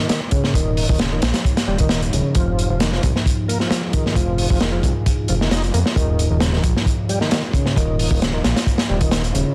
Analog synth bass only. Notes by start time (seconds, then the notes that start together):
0.54 D#1
0.89 D#1
1.23 A#1
1.68 D#1
2.13 D#1
2.35 F1
2.70 F1
3.03 C2
4.16 F1
4.50 F1
4.83 C2
5.29 F1
5.74 F2
5.96 D#1
6.31 D#1
6.64 A#1
7.77 D#1
8.11 D#1
8.45 A#1
8.90 D#1
9.35 D#1